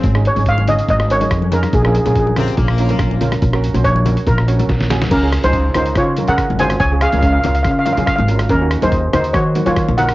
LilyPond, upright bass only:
\new Staff \with { instrumentName = "Upright bass" } { \clef bass \time 4/4 \key des \major \tempo 4 = 142 aes,,8. aes,,4~ aes,,16 aes,,4 f,4 | bes,,8. bes,,4~ bes,,16 bes,,4 bes,,4 | bes,,8. bes,,4~ bes,,16 bes,,4 bes,,4 | des,8. des,8. des,8 des8. des8 aes,,8. |
des,8. des,8. des,8 des8. des8 aes,,8. | ees,8. ees,8. ees,8 ees8. ees8 bes,,8. | }